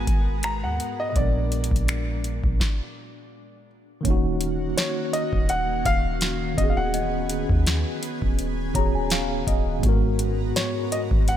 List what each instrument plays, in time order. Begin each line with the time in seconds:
Already playing: tine electric piano G#2 G#3 B3 F#4 A#4, ambient pad G#3 B3 F#4 A#4, grand piano G#5
0.07 808-style bass G#1, kick, closed hi-hat
0.43 grand piano A#5, finger snap, closed hi-hat
0.64 808-style bass D#2, grand piano F#5
0.80 closed hi-hat
1.00 grand piano D#5
1.09 tine electric piano A#2, grand piano D#5
1.14 808-style bass A#1, ambient pad A#2 D4, tine electric piano G#3 B3, grand piano D5, kick, closed hi-hat
1.19 tine electric piano D4 A#4
1.52 closed hi-hat
1.64 closed hi-hat
1.71 808-style bass A#1, kick
1.76 closed hi-hat
1.88 finger snap, closed hi-hat
2.24 closed hi-hat
2.44 808-style bass A#1, kick
2.60 kick, snare
4.01 tine electric piano D#3 A#3, ambient pad C#4, celesta C#5
4.05 808-style bass D#1, ambient pad D#3 A#3 F#4, tine electric piano C#4 D#4, kick, closed hi-hat
4.10 tine electric piano F#4
4.41 closed hi-hat
4.77 grand piano C#5, snare, closed hi-hat
5.13 grand piano D#5, closed hi-hat
5.33 808-style bass D#1, kick
5.49 grand piano F#5, closed hi-hat
5.85 808-style bass D#1, grand piano F5, kick, closed hi-hat
6.21 snare, closed hi-hat
6.54 808-style bass D#1, tine electric piano D#3 B3, ambient pad B3 G#4, grand piano D#5, kick
6.58 tine electric piano C#4 F#4, closed hi-hat
6.64 tine electric piano G#4
6.70 grand piano F5
6.77 grand piano F#5
6.94 celesta D#5, closed hi-hat
7.30 closed hi-hat
7.50 808-style bass D#2, kick
7.67 snare, closed hi-hat
8.03 closed hi-hat
8.22 808-style bass D#1, kick
8.39 closed hi-hat
8.73 808-style bass D#1, tine electric piano D#3 B3 C#4 F#4 A#5, celesta C#5, kick, closed hi-hat
8.78 tine electric piano G#4
8.95 tine electric piano G#5
9.10 tine electric piano F5, snare, closed hi-hat
9.47 808-style bass D#1, tine electric piano D#5, kick, closed hi-hat
9.79 tine electric piano G#2 G#3, ambient pad G#3 B3 F#4
9.83 808-style bass G#1, tine electric piano B3 F#4, ambient pad A#4, kick, closed hi-hat
9.89 tine electric piano A#4
10.19 closed hi-hat
10.56 grand piano C#5, snare, closed hi-hat
10.92 grand piano D#5, closed hi-hat
11.11 808-style bass G#1, kick
11.28 grand piano F#5, closed hi-hat